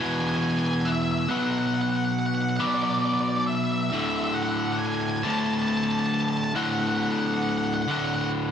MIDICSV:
0, 0, Header, 1, 3, 480
1, 0, Start_track
1, 0, Tempo, 878477
1, 711, Time_signature, 6, 3, 24, 8
1, 4652, End_track
2, 0, Start_track
2, 0, Title_t, "Lead electric guitar"
2, 0, Program_c, 0, 29
2, 30, Note_on_c, 0, 80, 81
2, 72, Note_off_c, 0, 80, 0
2, 75, Note_on_c, 0, 80, 91
2, 116, Note_off_c, 0, 80, 0
2, 119, Note_on_c, 0, 80, 81
2, 156, Note_off_c, 0, 80, 0
2, 158, Note_on_c, 0, 80, 104
2, 198, Note_off_c, 0, 80, 0
2, 200, Note_on_c, 0, 80, 94
2, 236, Note_off_c, 0, 80, 0
2, 238, Note_on_c, 0, 80, 98
2, 275, Note_off_c, 0, 80, 0
2, 277, Note_on_c, 0, 80, 87
2, 318, Note_off_c, 0, 80, 0
2, 321, Note_on_c, 0, 80, 97
2, 360, Note_off_c, 0, 80, 0
2, 363, Note_on_c, 0, 80, 80
2, 401, Note_off_c, 0, 80, 0
2, 403, Note_on_c, 0, 80, 92
2, 442, Note_off_c, 0, 80, 0
2, 444, Note_on_c, 0, 80, 77
2, 465, Note_on_c, 0, 76, 83
2, 485, Note_off_c, 0, 80, 0
2, 501, Note_off_c, 0, 76, 0
2, 503, Note_on_c, 0, 76, 59
2, 548, Note_off_c, 0, 76, 0
2, 557, Note_on_c, 0, 76, 74
2, 602, Note_off_c, 0, 76, 0
2, 609, Note_on_c, 0, 76, 66
2, 647, Note_off_c, 0, 76, 0
2, 649, Note_on_c, 0, 76, 66
2, 694, Note_off_c, 0, 76, 0
2, 703, Note_on_c, 0, 78, 94
2, 744, Note_off_c, 0, 78, 0
2, 749, Note_on_c, 0, 78, 72
2, 781, Note_off_c, 0, 78, 0
2, 783, Note_on_c, 0, 78, 86
2, 823, Note_off_c, 0, 78, 0
2, 825, Note_on_c, 0, 78, 68
2, 863, Note_off_c, 0, 78, 0
2, 865, Note_on_c, 0, 78, 80
2, 906, Note_off_c, 0, 78, 0
2, 911, Note_on_c, 0, 78, 73
2, 950, Note_off_c, 0, 78, 0
2, 952, Note_on_c, 0, 78, 82
2, 989, Note_off_c, 0, 78, 0
2, 992, Note_on_c, 0, 78, 81
2, 1033, Note_off_c, 0, 78, 0
2, 1035, Note_on_c, 0, 78, 93
2, 1069, Note_off_c, 0, 78, 0
2, 1072, Note_on_c, 0, 78, 76
2, 1113, Note_off_c, 0, 78, 0
2, 1120, Note_on_c, 0, 78, 91
2, 1155, Note_off_c, 0, 78, 0
2, 1157, Note_on_c, 0, 78, 79
2, 1197, Note_off_c, 0, 78, 0
2, 1199, Note_on_c, 0, 78, 90
2, 1234, Note_off_c, 0, 78, 0
2, 1236, Note_on_c, 0, 78, 75
2, 1278, Note_off_c, 0, 78, 0
2, 1283, Note_on_c, 0, 78, 81
2, 1317, Note_off_c, 0, 78, 0
2, 1319, Note_on_c, 0, 78, 69
2, 1361, Note_off_c, 0, 78, 0
2, 1364, Note_on_c, 0, 78, 74
2, 1399, Note_off_c, 0, 78, 0
2, 1402, Note_on_c, 0, 78, 67
2, 1419, Note_on_c, 0, 74, 100
2, 1443, Note_off_c, 0, 78, 0
2, 1458, Note_off_c, 0, 74, 0
2, 1460, Note_on_c, 0, 74, 72
2, 1497, Note_off_c, 0, 74, 0
2, 1499, Note_on_c, 0, 74, 89
2, 1541, Note_off_c, 0, 74, 0
2, 1549, Note_on_c, 0, 74, 79
2, 1585, Note_off_c, 0, 74, 0
2, 1587, Note_on_c, 0, 74, 95
2, 1627, Note_off_c, 0, 74, 0
2, 1630, Note_on_c, 0, 74, 77
2, 1666, Note_off_c, 0, 74, 0
2, 1669, Note_on_c, 0, 74, 91
2, 1711, Note_off_c, 0, 74, 0
2, 1713, Note_on_c, 0, 74, 80
2, 1749, Note_off_c, 0, 74, 0
2, 1751, Note_on_c, 0, 74, 89
2, 1793, Note_off_c, 0, 74, 0
2, 1798, Note_on_c, 0, 74, 76
2, 1836, Note_off_c, 0, 74, 0
2, 1839, Note_on_c, 0, 74, 79
2, 1881, Note_off_c, 0, 74, 0
2, 1895, Note_on_c, 0, 76, 78
2, 1937, Note_off_c, 0, 76, 0
2, 1940, Note_on_c, 0, 76, 62
2, 1985, Note_off_c, 0, 76, 0
2, 1988, Note_on_c, 0, 76, 74
2, 2030, Note_off_c, 0, 76, 0
2, 2032, Note_on_c, 0, 76, 62
2, 2077, Note_off_c, 0, 76, 0
2, 2079, Note_on_c, 0, 76, 70
2, 2125, Note_off_c, 0, 76, 0
2, 2131, Note_on_c, 0, 76, 105
2, 2173, Note_off_c, 0, 76, 0
2, 2175, Note_on_c, 0, 76, 75
2, 2220, Note_off_c, 0, 76, 0
2, 2222, Note_on_c, 0, 76, 98
2, 2269, Note_off_c, 0, 76, 0
2, 2272, Note_on_c, 0, 76, 83
2, 2314, Note_off_c, 0, 76, 0
2, 2316, Note_on_c, 0, 76, 86
2, 2362, Note_off_c, 0, 76, 0
2, 2371, Note_on_c, 0, 78, 88
2, 2414, Note_off_c, 0, 78, 0
2, 2418, Note_on_c, 0, 78, 65
2, 2452, Note_off_c, 0, 78, 0
2, 2455, Note_on_c, 0, 78, 79
2, 2493, Note_off_c, 0, 78, 0
2, 2495, Note_on_c, 0, 78, 69
2, 2538, Note_off_c, 0, 78, 0
2, 2543, Note_on_c, 0, 78, 73
2, 2580, Note_off_c, 0, 78, 0
2, 2582, Note_on_c, 0, 78, 65
2, 2614, Note_off_c, 0, 78, 0
2, 2616, Note_on_c, 0, 80, 116
2, 2652, Note_off_c, 0, 80, 0
2, 2655, Note_on_c, 0, 80, 90
2, 2697, Note_off_c, 0, 80, 0
2, 2703, Note_on_c, 0, 80, 104
2, 2736, Note_off_c, 0, 80, 0
2, 2738, Note_on_c, 0, 80, 88
2, 2780, Note_off_c, 0, 80, 0
2, 2785, Note_on_c, 0, 80, 101
2, 2823, Note_off_c, 0, 80, 0
2, 2825, Note_on_c, 0, 80, 83
2, 2857, Note_off_c, 0, 80, 0
2, 2859, Note_on_c, 0, 81, 101
2, 2897, Note_off_c, 0, 81, 0
2, 2899, Note_on_c, 0, 81, 75
2, 2940, Note_off_c, 0, 81, 0
2, 2946, Note_on_c, 0, 81, 83
2, 2983, Note_off_c, 0, 81, 0
2, 2985, Note_on_c, 0, 81, 72
2, 3023, Note_off_c, 0, 81, 0
2, 3025, Note_on_c, 0, 81, 85
2, 3066, Note_off_c, 0, 81, 0
2, 3069, Note_on_c, 0, 81, 77
2, 3104, Note_off_c, 0, 81, 0
2, 3106, Note_on_c, 0, 81, 91
2, 3147, Note_off_c, 0, 81, 0
2, 3156, Note_on_c, 0, 81, 81
2, 3188, Note_off_c, 0, 81, 0
2, 3190, Note_on_c, 0, 81, 96
2, 3228, Note_off_c, 0, 81, 0
2, 3230, Note_on_c, 0, 81, 77
2, 3272, Note_off_c, 0, 81, 0
2, 3275, Note_on_c, 0, 81, 94
2, 3310, Note_off_c, 0, 81, 0
2, 3312, Note_on_c, 0, 81, 78
2, 3353, Note_off_c, 0, 81, 0
2, 3357, Note_on_c, 0, 81, 86
2, 3391, Note_off_c, 0, 81, 0
2, 3393, Note_on_c, 0, 81, 82
2, 3433, Note_off_c, 0, 81, 0
2, 3436, Note_on_c, 0, 81, 85
2, 3477, Note_off_c, 0, 81, 0
2, 3482, Note_on_c, 0, 81, 75
2, 3517, Note_off_c, 0, 81, 0
2, 3520, Note_on_c, 0, 81, 87
2, 3561, Note_off_c, 0, 81, 0
2, 3582, Note_on_c, 0, 78, 77
2, 3623, Note_off_c, 0, 78, 0
2, 3625, Note_on_c, 0, 78, 55
2, 3662, Note_off_c, 0, 78, 0
2, 3664, Note_on_c, 0, 78, 70
2, 3707, Note_off_c, 0, 78, 0
2, 3713, Note_on_c, 0, 78, 57
2, 3754, Note_off_c, 0, 78, 0
2, 3756, Note_on_c, 0, 78, 74
2, 3797, Note_off_c, 0, 78, 0
2, 3799, Note_on_c, 0, 78, 60
2, 3838, Note_off_c, 0, 78, 0
2, 3840, Note_on_c, 0, 78, 71
2, 3883, Note_off_c, 0, 78, 0
2, 3887, Note_on_c, 0, 78, 66
2, 3927, Note_off_c, 0, 78, 0
2, 3929, Note_on_c, 0, 78, 80
2, 3966, Note_off_c, 0, 78, 0
2, 3968, Note_on_c, 0, 78, 63
2, 4009, Note_off_c, 0, 78, 0
2, 4012, Note_on_c, 0, 78, 80
2, 4054, Note_off_c, 0, 78, 0
2, 4058, Note_on_c, 0, 78, 68
2, 4091, Note_off_c, 0, 78, 0
2, 4093, Note_on_c, 0, 78, 74
2, 4136, Note_off_c, 0, 78, 0
2, 4140, Note_on_c, 0, 78, 67
2, 4178, Note_off_c, 0, 78, 0
2, 4180, Note_on_c, 0, 78, 70
2, 4223, Note_off_c, 0, 78, 0
2, 4228, Note_on_c, 0, 78, 65
2, 4271, Note_off_c, 0, 78, 0
2, 4274, Note_on_c, 0, 78, 71
2, 4317, Note_off_c, 0, 78, 0
2, 4320, Note_on_c, 0, 78, 65
2, 4355, Note_off_c, 0, 78, 0
2, 4357, Note_on_c, 0, 78, 71
2, 4399, Note_off_c, 0, 78, 0
2, 4401, Note_on_c, 0, 78, 62
2, 4444, Note_off_c, 0, 78, 0
2, 4450, Note_on_c, 0, 78, 64
2, 4485, Note_off_c, 0, 78, 0
2, 4487, Note_on_c, 0, 78, 58
2, 4530, Note_off_c, 0, 78, 0
2, 4652, End_track
3, 0, Start_track
3, 0, Title_t, "Overdriven electric guitar"
3, 0, Program_c, 1, 29
3, 0, Note_on_c, 1, 47, 81
3, 0, Note_on_c, 1, 52, 99
3, 4, Note_on_c, 1, 40, 66
3, 695, Note_off_c, 1, 47, 0
3, 695, Note_off_c, 1, 52, 0
3, 699, Note_off_c, 1, 40, 0
3, 701, Note_on_c, 1, 47, 102
3, 710, Note_on_c, 1, 54, 97
3, 714, Note_on_c, 1, 59, 105
3, 1409, Note_off_c, 1, 47, 0
3, 1413, Note_off_c, 1, 59, 0
3, 1420, Note_on_c, 1, 59, 95
3, 1426, Note_off_c, 1, 54, 0
3, 1429, Note_on_c, 1, 54, 86
3, 1435, Note_on_c, 1, 47, 78
3, 2128, Note_off_c, 1, 59, 0
3, 2136, Note_off_c, 1, 47, 0
3, 2141, Note_on_c, 1, 38, 98
3, 2144, Note_off_c, 1, 54, 0
3, 2146, Note_on_c, 1, 45, 106
3, 2151, Note_on_c, 1, 50, 103
3, 2852, Note_off_c, 1, 45, 0
3, 2854, Note_off_c, 1, 50, 0
3, 2856, Note_on_c, 1, 50, 86
3, 2864, Note_on_c, 1, 45, 85
3, 2870, Note_off_c, 1, 38, 0
3, 2873, Note_on_c, 1, 38, 85
3, 3568, Note_off_c, 1, 50, 0
3, 3572, Note_off_c, 1, 38, 0
3, 3572, Note_off_c, 1, 45, 0
3, 3579, Note_on_c, 1, 38, 99
3, 3583, Note_on_c, 1, 45, 100
3, 3588, Note_on_c, 1, 50, 115
3, 4292, Note_off_c, 1, 38, 0
3, 4294, Note_off_c, 1, 45, 0
3, 4296, Note_off_c, 1, 50, 0
3, 4304, Note_on_c, 1, 50, 90
3, 4314, Note_on_c, 1, 45, 84
3, 4317, Note_on_c, 1, 38, 71
3, 4652, Note_off_c, 1, 38, 0
3, 4652, Note_off_c, 1, 45, 0
3, 4652, Note_off_c, 1, 50, 0
3, 4652, End_track
0, 0, End_of_file